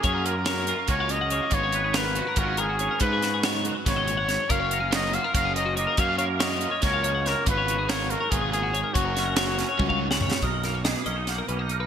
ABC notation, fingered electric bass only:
X:1
M:7/8
L:1/8
Q:1/4=141
K:F#
V:1 name="Fingered electric bass" clef=bass
F,,4 C,,3 | G,,,4 G,,,3 | G,,4 G,,,3 | F,,,4 F,,,3 |
F,,4 C,,3 | G,,,4 G,,,3 | F,,,4 C,,3 | B,,,3 B,,,2 B,,,2 |]